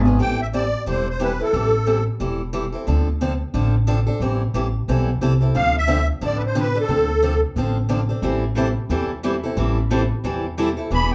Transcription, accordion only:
0, 0, Header, 1, 2, 480
1, 0, Start_track
1, 0, Key_signature, 0, "minor"
1, 0, Tempo, 335008
1, 269, Time_signature, 4, 2, 24, 8
1, 15973, End_track
2, 0, Start_track
2, 0, Title_t, "Accordion"
2, 0, Program_c, 0, 21
2, 302, Note_on_c, 0, 79, 94
2, 580, Note_off_c, 0, 79, 0
2, 591, Note_on_c, 0, 76, 85
2, 670, Note_off_c, 0, 76, 0
2, 782, Note_on_c, 0, 74, 91
2, 1214, Note_off_c, 0, 74, 0
2, 1278, Note_on_c, 0, 72, 77
2, 1548, Note_off_c, 0, 72, 0
2, 1571, Note_on_c, 0, 72, 78
2, 1726, Note_off_c, 0, 72, 0
2, 1756, Note_on_c, 0, 71, 77
2, 2028, Note_off_c, 0, 71, 0
2, 2047, Note_on_c, 0, 69, 76
2, 2925, Note_off_c, 0, 69, 0
2, 7969, Note_on_c, 0, 77, 97
2, 8254, Note_off_c, 0, 77, 0
2, 8275, Note_on_c, 0, 76, 92
2, 8703, Note_off_c, 0, 76, 0
2, 8962, Note_on_c, 0, 74, 85
2, 9137, Note_off_c, 0, 74, 0
2, 9138, Note_on_c, 0, 71, 71
2, 9202, Note_off_c, 0, 71, 0
2, 9258, Note_on_c, 0, 72, 77
2, 9408, Note_off_c, 0, 72, 0
2, 9455, Note_on_c, 0, 71, 78
2, 9715, Note_off_c, 0, 71, 0
2, 9749, Note_on_c, 0, 69, 75
2, 10614, Note_off_c, 0, 69, 0
2, 15673, Note_on_c, 0, 83, 105
2, 15921, Note_off_c, 0, 83, 0
2, 15929, Note_on_c, 0, 79, 82
2, 15973, Note_off_c, 0, 79, 0
2, 15973, End_track
0, 0, End_of_file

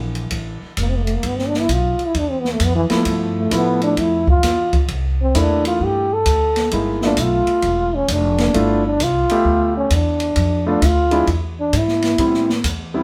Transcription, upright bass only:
0, 0, Header, 1, 3, 480
1, 0, Start_track
1, 0, Tempo, 456621
1, 1293, Time_signature, 4, 2, 24, 8
1, 13698, End_track
2, 0, Start_track
2, 0, Title_t, "Upright bass"
2, 0, Program_c, 0, 32
2, 0, Note_on_c, 0, 34, 75
2, 316, Note_off_c, 0, 34, 0
2, 329, Note_on_c, 0, 33, 69
2, 623, Note_off_c, 0, 33, 0
2, 813, Note_on_c, 0, 29, 75
2, 1279, Note_off_c, 0, 29, 0
2, 1295, Note_on_c, 0, 31, 74
2, 1761, Note_off_c, 0, 31, 0
2, 1771, Note_on_c, 0, 35, 78
2, 2066, Note_off_c, 0, 35, 0
2, 2254, Note_on_c, 0, 40, 72
2, 2721, Note_off_c, 0, 40, 0
2, 2732, Note_on_c, 0, 41, 75
2, 3027, Note_off_c, 0, 41, 0
2, 3211, Note_on_c, 0, 43, 75
2, 3680, Note_off_c, 0, 43, 0
2, 3691, Note_on_c, 0, 45, 78
2, 4160, Note_off_c, 0, 45, 0
2, 4172, Note_on_c, 0, 41, 73
2, 4641, Note_off_c, 0, 41, 0
2, 4656, Note_on_c, 0, 40, 73
2, 5123, Note_off_c, 0, 40, 0
2, 5132, Note_on_c, 0, 36, 70
2, 5601, Note_off_c, 0, 36, 0
2, 5622, Note_on_c, 0, 40, 83
2, 6087, Note_off_c, 0, 40, 0
2, 6100, Note_on_c, 0, 43, 68
2, 6566, Note_off_c, 0, 43, 0
2, 6577, Note_on_c, 0, 38, 81
2, 7044, Note_off_c, 0, 38, 0
2, 7058, Note_on_c, 0, 31, 74
2, 7525, Note_off_c, 0, 31, 0
2, 7537, Note_on_c, 0, 35, 82
2, 7831, Note_off_c, 0, 35, 0
2, 8019, Note_on_c, 0, 28, 73
2, 8485, Note_off_c, 0, 28, 0
2, 8497, Note_on_c, 0, 29, 85
2, 8964, Note_off_c, 0, 29, 0
2, 8975, Note_on_c, 0, 31, 75
2, 9443, Note_off_c, 0, 31, 0
2, 9456, Note_on_c, 0, 36, 82
2, 9750, Note_off_c, 0, 36, 0
2, 9930, Note_on_c, 0, 38, 79
2, 10400, Note_off_c, 0, 38, 0
2, 10413, Note_on_c, 0, 40, 86
2, 10881, Note_off_c, 0, 40, 0
2, 10892, Note_on_c, 0, 41, 78
2, 11360, Note_off_c, 0, 41, 0
2, 11371, Note_on_c, 0, 38, 82
2, 11839, Note_off_c, 0, 38, 0
2, 11850, Note_on_c, 0, 40, 72
2, 12318, Note_off_c, 0, 40, 0
2, 12329, Note_on_c, 0, 44, 79
2, 12798, Note_off_c, 0, 44, 0
2, 12809, Note_on_c, 0, 45, 70
2, 13277, Note_off_c, 0, 45, 0
2, 13289, Note_on_c, 0, 40, 77
2, 13698, Note_off_c, 0, 40, 0
2, 13698, End_track
3, 0, Start_track
3, 0, Title_t, "Muted upright bass strokes"
3, 650, Note_on_c, 9, 29, 34
3, 756, Note_off_c, 9, 29, 0
3, 2095, Note_on_c, 9, 29, 35
3, 2200, Note_off_c, 9, 29, 0
3, 3053, Note_on_c, 9, 29, 39
3, 3158, Note_off_c, 9, 29, 0
3, 7846, Note_on_c, 9, 29, 34
3, 7951, Note_off_c, 9, 29, 0
3, 9767, Note_on_c, 9, 29, 34
3, 9872, Note_off_c, 9, 29, 0
3, 13698, End_track
0, 0, End_of_file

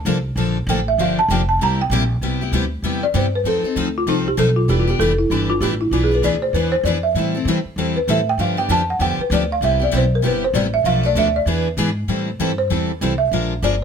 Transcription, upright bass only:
0, 0, Header, 1, 3, 480
1, 0, Start_track
1, 0, Key_signature, 0, "major"
1, 0, Tempo, 308642
1, 1529, Time_signature, 4, 2, 24, 8
1, 21527, End_track
2, 0, Start_track
2, 0, Title_t, "Upright bass"
2, 0, Program_c, 0, 32
2, 77, Note_on_c, 0, 36, 91
2, 544, Note_off_c, 0, 36, 0
2, 553, Note_on_c, 0, 34, 89
2, 1027, Note_off_c, 0, 34, 0
2, 1036, Note_on_c, 0, 33, 102
2, 1508, Note_off_c, 0, 33, 0
2, 1530, Note_on_c, 0, 31, 88
2, 1988, Note_off_c, 0, 31, 0
2, 1997, Note_on_c, 0, 29, 91
2, 2466, Note_off_c, 0, 29, 0
2, 2476, Note_on_c, 0, 36, 82
2, 2941, Note_off_c, 0, 36, 0
2, 2950, Note_on_c, 0, 34, 98
2, 3427, Note_off_c, 0, 34, 0
2, 3443, Note_on_c, 0, 36, 78
2, 3906, Note_off_c, 0, 36, 0
2, 3915, Note_on_c, 0, 38, 86
2, 4382, Note_off_c, 0, 38, 0
2, 4392, Note_on_c, 0, 40, 77
2, 4868, Note_off_c, 0, 40, 0
2, 4884, Note_on_c, 0, 43, 97
2, 5338, Note_off_c, 0, 43, 0
2, 5347, Note_on_c, 0, 41, 77
2, 5630, Note_off_c, 0, 41, 0
2, 5841, Note_on_c, 0, 38, 85
2, 6314, Note_off_c, 0, 38, 0
2, 6324, Note_on_c, 0, 36, 80
2, 6796, Note_off_c, 0, 36, 0
2, 6804, Note_on_c, 0, 35, 101
2, 7275, Note_off_c, 0, 35, 0
2, 7291, Note_on_c, 0, 28, 88
2, 7752, Note_off_c, 0, 28, 0
2, 7761, Note_on_c, 0, 29, 92
2, 8234, Note_off_c, 0, 29, 0
2, 8241, Note_on_c, 0, 31, 85
2, 8708, Note_off_c, 0, 31, 0
2, 8717, Note_on_c, 0, 33, 99
2, 9186, Note_off_c, 0, 33, 0
2, 9195, Note_on_c, 0, 35, 87
2, 9664, Note_off_c, 0, 35, 0
2, 9674, Note_on_c, 0, 38, 87
2, 10145, Note_off_c, 0, 38, 0
2, 10155, Note_on_c, 0, 40, 83
2, 10621, Note_off_c, 0, 40, 0
2, 10630, Note_on_c, 0, 41, 98
2, 11103, Note_off_c, 0, 41, 0
2, 11112, Note_on_c, 0, 45, 84
2, 11580, Note_off_c, 0, 45, 0
2, 11589, Note_on_c, 0, 52, 93
2, 11869, Note_off_c, 0, 52, 0
2, 12069, Note_on_c, 0, 40, 79
2, 12544, Note_off_c, 0, 40, 0
2, 12559, Note_on_c, 0, 45, 93
2, 13018, Note_off_c, 0, 45, 0
2, 13028, Note_on_c, 0, 43, 82
2, 13499, Note_off_c, 0, 43, 0
2, 13508, Note_on_c, 0, 41, 95
2, 13976, Note_off_c, 0, 41, 0
2, 13985, Note_on_c, 0, 40, 87
2, 14265, Note_off_c, 0, 40, 0
2, 14461, Note_on_c, 0, 38, 101
2, 14933, Note_off_c, 0, 38, 0
2, 14943, Note_on_c, 0, 36, 89
2, 15418, Note_off_c, 0, 36, 0
2, 15436, Note_on_c, 0, 35, 98
2, 15894, Note_off_c, 0, 35, 0
2, 15904, Note_on_c, 0, 31, 87
2, 16378, Note_off_c, 0, 31, 0
2, 16384, Note_on_c, 0, 33, 104
2, 16852, Note_off_c, 0, 33, 0
2, 16862, Note_on_c, 0, 35, 84
2, 17336, Note_off_c, 0, 35, 0
2, 17345, Note_on_c, 0, 38, 92
2, 17809, Note_off_c, 0, 38, 0
2, 17818, Note_on_c, 0, 40, 85
2, 18295, Note_off_c, 0, 40, 0
2, 18303, Note_on_c, 0, 44, 100
2, 18778, Note_off_c, 0, 44, 0
2, 18784, Note_on_c, 0, 45, 74
2, 19259, Note_off_c, 0, 45, 0
2, 19274, Note_on_c, 0, 43, 82
2, 19744, Note_off_c, 0, 43, 0
2, 19756, Note_on_c, 0, 40, 77
2, 20226, Note_off_c, 0, 40, 0
2, 20235, Note_on_c, 0, 36, 93
2, 20696, Note_off_c, 0, 36, 0
2, 20705, Note_on_c, 0, 34, 80
2, 21179, Note_off_c, 0, 34, 0
2, 21188, Note_on_c, 0, 31, 87
2, 21527, Note_off_c, 0, 31, 0
2, 21527, End_track
3, 0, Start_track
3, 0, Title_t, "Muted upright bass strokes"
3, 5643, Note_on_c, 9, 29, 41
3, 5799, Note_off_c, 9, 29, 0
3, 11885, Note_on_c, 9, 29, 42
3, 12041, Note_off_c, 9, 29, 0
3, 14277, Note_on_c, 9, 29, 42
3, 14433, Note_off_c, 9, 29, 0
3, 21527, End_track
0, 0, End_of_file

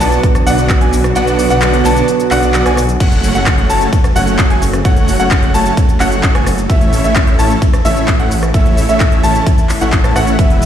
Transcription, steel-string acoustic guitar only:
0, 0, Header, 1, 2, 480
1, 0, Start_track
1, 0, Key_signature, 3, "major"
1, 0, Tempo, 461538
1, 1204, Time_signature, 4, 2, 24, 8
1, 11082, End_track
2, 0, Start_track
2, 0, Title_t, "Steel-string acoustic guitar"
2, 0, Program_c, 0, 25
2, 0, Note_on_c, 0, 47, 100
2, 0, Note_on_c, 0, 54, 91
2, 4, Note_on_c, 0, 59, 88
2, 10, Note_on_c, 0, 62, 90
2, 16, Note_on_c, 0, 66, 109
2, 1169, Note_off_c, 0, 47, 0
2, 1172, Note_off_c, 0, 54, 0
2, 1175, Note_off_c, 0, 59, 0
2, 1178, Note_off_c, 0, 62, 0
2, 1181, Note_off_c, 0, 66, 0
2, 1197, Note_on_c, 0, 47, 93
2, 1204, Note_on_c, 0, 54, 67
2, 1204, Note_on_c, 0, 59, 88
2, 1209, Note_on_c, 0, 62, 77
2, 1210, Note_on_c, 0, 66, 107
2, 1532, Note_off_c, 0, 47, 0
2, 1534, Note_off_c, 0, 54, 0
2, 1535, Note_off_c, 0, 59, 0
2, 1537, Note_off_c, 0, 62, 0
2, 1538, Note_off_c, 0, 66, 0
2, 1556, Note_on_c, 0, 47, 78
2, 1562, Note_on_c, 0, 59, 73
2, 1563, Note_on_c, 0, 54, 66
2, 1570, Note_on_c, 0, 66, 83
2, 1572, Note_on_c, 0, 62, 55
2, 1892, Note_off_c, 0, 47, 0
2, 1894, Note_off_c, 0, 54, 0
2, 1895, Note_off_c, 0, 59, 0
2, 1897, Note_off_c, 0, 62, 0
2, 1898, Note_off_c, 0, 66, 0
2, 1912, Note_on_c, 0, 47, 98
2, 1918, Note_on_c, 0, 54, 90
2, 1924, Note_on_c, 0, 59, 88
2, 1931, Note_on_c, 0, 62, 92
2, 1936, Note_on_c, 0, 66, 107
2, 3089, Note_off_c, 0, 47, 0
2, 3092, Note_off_c, 0, 54, 0
2, 3095, Note_off_c, 0, 59, 0
2, 3098, Note_off_c, 0, 62, 0
2, 3101, Note_off_c, 0, 66, 0
2, 11082, End_track
0, 0, End_of_file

